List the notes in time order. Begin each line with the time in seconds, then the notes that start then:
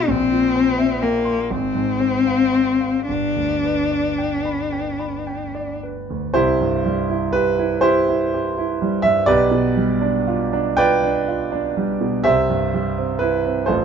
Already playing: B2 G4 F5 G5
0.08 A#1 C4
0.32 A#2
0.56 C5
0.78 E5
1.02 A#3 G5
1.25 C6
1.51 G#1 C4
1.75 G#2
2.00 C5
2.27 F5
2.53 C6
2.80 F5
3.09 G1 D4
3.36 D2
3.64 B4
3.91 D5
4.18 G5
4.45 B5
4.72 G5
4.99 B5
5.27 G5
5.55 D5
5.83 B4
6.10 D2
6.34 C2 E4 G4 C5
6.61 G2
6.86 G3
7.10 E4
7.33 G4 B4
7.59 E4
7.81 E4 G4 C5
8.09 E4
8.34 G4
8.58 E4
8.82 G3
9.02 G2 E5
9.26 B1 G4 B4 D5
9.51 B2
9.77 G3
10.01 D4
10.28 F4
10.53 D4
10.77 F4 B4 D5 G5
11.04 D4
11.28 F4
11.52 D4
11.77 G3
12.01 B2
12.24 C2 G4 C5 E5
12.50 G2
12.74 G3
12.98 C4
13.19 E4 B4
13.45 C4
13.66 A1 F4 A4 C5